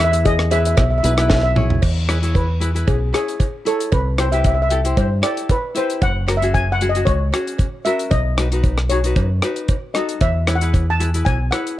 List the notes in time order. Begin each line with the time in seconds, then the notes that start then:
Already playing: E2
0.00 E4 G#4 B4, cross-stick, closed hi-hat
0.04 E5
0.12 E5, closed hi-hat
0.25 G#4 D#5, kick, closed hi-hat, cowbell
0.39 cross-stick
0.51 E4 G#4 B4 E5, closed hi-hat, cowbell
0.59 E5
0.65 E5, closed hi-hat
0.75 B1 E5, kick, cross-stick, closed hi-hat, cowbell
0.82 E5
0.90 E5
0.98 E5
1.03 B1 E4 G#4 B4 E5, closed hi-hat
1.13 E4 E5
1.18 G#4 B4 E5, cross-stick, closed hi-hat
1.28 E5, kick, snare, cowbell
1.36 E5
1.43 E5
1.56 E4 G#4 C#5, mid tom
1.70 floor tom
1.82 E2, kick, crash, cowbell
2.08 E4 G#4 B4, cross-stick, closed hi-hat, cowbell
2.22 E4 G#4 C#5, closed hi-hat
2.35 B4, kick, closed hi-hat, cowbell
2.60 E4 G#4 B4, closed hi-hat
2.74 E4 G#4 B4, closed hi-hat
2.87 B1 G#4, kick, closed hi-hat, cowbell
3.13 E4 G#4 C#5, cross-stick, closed hi-hat, cowbell
3.28 closed hi-hat
3.40 kick, closed hi-hat, cowbell
3.65 E4 G#4 A4 C#5, closed hi-hat
3.80 closed hi-hat
3.92 C2 B4, kick, closed hi-hat, cowbell
4.18 E4 G4 C5, cross-stick, closed hi-hat, cowbell
4.32 E4 G4 B4 E5, closed hi-hat
4.44 E5, kick, closed hi-hat, cowbell
4.54 E5
4.62 E5
4.69 E4 G4 A4 E5, closed hi-hat
4.84 E4 G4 C5, closed hi-hat
4.97 G2 C5, kick, closed hi-hat, cowbell
5.22 E4 G4 A4 D5, cross-stick, closed hi-hat, cowbell
5.37 closed hi-hat
5.49 B4, kick, closed hi-hat, cowbell
5.75 E4 G4 B4 C5, closed hi-hat
5.90 closed hi-hat
6.02 F#1 F#5, kick, closed hi-hat, cowbell
6.27 C#4 F#4 A#4, cross-stick, closed hi-hat, cowbell
6.37 E5
6.42 C#4 F#4 G#4, closed hi-hat
6.54 G#5, kick, closed hi-hat, cowbell
6.72 F#5
6.81 C#4 F#4 G#4, closed hi-hat
6.89 D#5
6.95 C#4 F#4 G#4, closed hi-hat
7.05 C#2 C#5, kick, closed hi-hat, cowbell
7.33 C#4 F#4 G#4, cross-stick, closed hi-hat, cowbell
7.47 closed hi-hat
7.58 kick, closed hi-hat, cowbell
7.85 C#4 F#4 A#4 E5, closed hi-hat
7.99 closed hi-hat
8.11 B1 D#5, kick, closed hi-hat, cowbell
8.37 D#4 F#4 B4, cross-stick, closed hi-hat, cowbell
8.52 D#4 F#4 B4, closed hi-hat
8.63 kick, closed hi-hat, cowbell
8.78 cross-stick
8.89 D#4 F#4 G#4 C#5, closed hi-hat
9.04 D#4 F#4 B4, closed hi-hat
9.16 F#2, kick, closed hi-hat, cowbell
9.42 D#4 F#4 B4, cross-stick, closed hi-hat, cowbell
9.56 closed hi-hat
9.68 kick, closed hi-hat, cowbell
9.94 D#4 F#4 A4 D#5, cross-stick, closed hi-hat
10.09 closed hi-hat
10.21 E2 E5, kick, closed hi-hat, cowbell
10.47 E4 G#4 B4, cross-stick, closed hi-hat, cowbell
10.55 F#5
10.61 E4 G#4 B4, closed hi-hat
10.74 kick, closed hi-hat, cowbell
10.90 A5
10.99 E4 G#4 B4, closed hi-hat
11.14 E4 G#4 B4, closed hi-hat
11.25 B1 G#5, kick, closed hi-hat, cowbell
11.51 E4 G#4 B4 F#5, cross-stick, closed hi-hat, cowbell
11.67 closed hi-hat